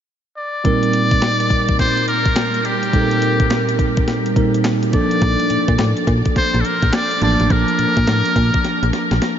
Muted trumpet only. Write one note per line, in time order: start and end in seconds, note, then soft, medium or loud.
0.37 1.76 D5 loud
1.80 2.06 C5 loud
2.08 2.67 A#4 medium
2.66 3.79 G4 medium
4.94 6.04 D5 loud
6.37 6.62 C5 medium
6.61 6.67 A4 medium
6.66 6.96 A#4 medium
6.95 7.23 D5 loud
7.23 7.53 D5 medium
7.52 9.22 A#4 loud